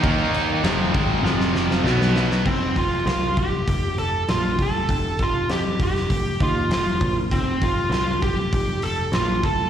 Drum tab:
CC |x-x-x-x---------|x---------------|----------------|----------------|
HH |----------------|--o-o-o-o-o-o-o-|o-o-o-o-o-o-o-o-|o-o-o-o-o-o-o-o-|
SD |----o---oooooooo|----o-------o---|----o--o----o---|----o-------o---|
BD |o-----o---------|o-o---o-o-----o-|o-o---o-o-o---o-|o-o---o-o-----o-|